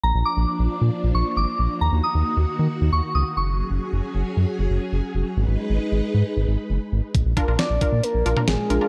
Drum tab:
HH |----------------|----------------|----------------|----------------|
SD |----------------|----------------|----------------|----------------|
T2 |----------------|----------------|----------------|----------------|
BD |----------------|----------------|----------------|----------------|

HH |x-x-x-x-x-x-x-x-|
SD |----o-------o---|
T2 |-----------o----|
BD |o-o---o---------|